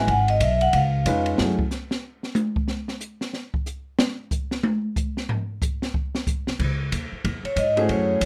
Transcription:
0.07 G#1 F#5, kick, ride
0.28 D#5, ride
0.40 B1 E5, kick, hi-hat pedal, ride
0.61 F#5, ride
0.73 C#2 F5, kick, ride
1.06 F2 G#3 C#4 D#4 F4 B4, kick, hi-hat pedal, ride
1.26 ride
1.38 F#2 A3 C#4 E4 F#4 G#4, snare
1.59 kick
1.71 snare, hi-hat pedal
1.91 snare
2.23 snare
2.35 hi-hat pedal, high tom
2.56 kick
2.68 snare
2.88 snare
3.01 hi-hat pedal
3.21 snare
3.33 snare
3.54 kick
3.66 hi-hat pedal
3.99 snare
4.31 kick, hi-hat pedal
4.51 snare
4.63 high tom
4.96 kick, hi-hat pedal
5.17 snare
5.29 floor tom
5.62 kick, hi-hat pedal
5.82 snare
5.94 kick
6.15 snare
6.27 kick, hi-hat pedal
6.47 muted upright bass stroke, snare
6.59 C#2, kick, crash
6.92 D#2, kick, hi-hat pedal, ride
7.12 muted upright bass stroke
7.24 E2, kick, ride
7.43 C#5, muted upright bass stroke, ride
7.56 G#2 D#5, kick, hi-hat pedal, ride
7.76 A3 C#4 E4 F#4 G#4 C5, ride
7.89 F#2 C#5, kick, ride
8.21 E2, kick, hi-hat pedal, ride

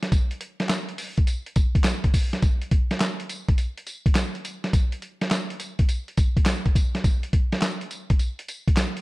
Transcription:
0.03 snare, closed hi-hat
0.12 kick, closed hi-hat, tambourine
0.31 closed hi-hat
0.41 closed hi-hat
0.60 snare, closed hi-hat
0.69 snare, clap, closed hi-hat, tambourine
0.89 closed hi-hat
0.98 open hi-hat, tambourine
1.17 kick, closed hi-hat
1.27 closed hi-hat, tambourine
1.46 closed hi-hat
1.56 kick, closed hi-hat, tambourine
1.75 kick, closed hi-hat
1.84 snare, clap, closed hi-hat, tambourine
2.04 kick, closed hi-hat
2.14 kick, open hi-hat, tambourine
2.33 snare, closed hi-hat
2.42 kick, closed hi-hat, tambourine
2.62 closed hi-hat
2.71 kick, closed hi-hat
2.91 snare, closed hi-hat
3.00 snare, clap, closed hi-hat, tambourine
3.20 closed hi-hat
3.29 closed hi-hat, tambourine
3.48 kick, closed hi-hat
3.58 closed hi-hat, tambourine
3.77 closed hi-hat
3.87 closed hi-hat, tambourine
4.06 kick, closed hi-hat
4.15 snare, clap, closed hi-hat, tambourine
4.35 closed hi-hat
4.45 closed hi-hat, tambourine
4.64 snare, closed hi-hat
4.73 kick, closed hi-hat, tambourine
4.92 closed hi-hat
5.02 closed hi-hat
5.21 snare, closed hi-hat
5.31 snare, clap, closed hi-hat, tambourine
5.50 closed hi-hat
5.60 closed hi-hat, tambourine
5.79 kick, closed hi-hat
5.89 closed hi-hat, tambourine
6.08 closed hi-hat
6.17 kick, closed hi-hat, tambourine
6.37 kick, closed hi-hat
6.46 snare, clap, closed hi-hat, tambourine
6.66 kick, closed hi-hat
6.75 kick, closed hi-hat, tambourine
6.95 snare, closed hi-hat
7.04 kick, closed hi-hat, tambourine
7.23 closed hi-hat
7.33 kick, closed hi-hat
7.52 snare, closed hi-hat
7.62 snare, clap, closed hi-hat, tambourine
7.81 closed hi-hat
7.91 closed hi-hat, tambourine
8.10 kick, closed hi-hat
8.19 closed hi-hat, tambourine
8.39 closed hi-hat
8.48 closed hi-hat, tambourine
8.68 kick, closed hi-hat
8.77 snare, clap, closed hi-hat, tambourine
8.97 closed hi-hat

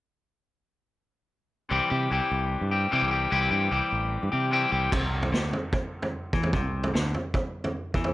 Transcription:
1.69 C2 C3 E3 G3 C4 G4
1.90 C3 G3 C4 G4
2.11 C2 E3 G3 C4 G4
2.31 C2
2.61 G2
2.71 G3 C4 G4
2.91 C3 E3 G3 C4 G4
3.02 C2
3.11 G3 C4 G4
3.30 C2 C3 E3 G3 C4 G4
3.51 G2 G3 C4 G4
3.71 C2 E3 G3 C4 G4
3.92 A1
4.23 G2
4.32 C3 G3 C4 G4
4.51 C3 E3 G3 C4 G4
4.72 C2 G3 C4 G4
4.92 C2 C3, kick, floor tom, crash
5.23 floor tom
5.32 D2 D3, snare
5.53 floor tom
5.73 kick, floor tom
6.02 floor tom
6.33 E2 E3, kick
6.43 floor tom
6.53 C2 C3, kick, floor tom
6.84 floor tom
6.94 D2 D3, snare
7.14 floor tom
7.34 kick, floor tom
7.64 floor tom
7.94 E2 E3, kick
8.04 floor tom

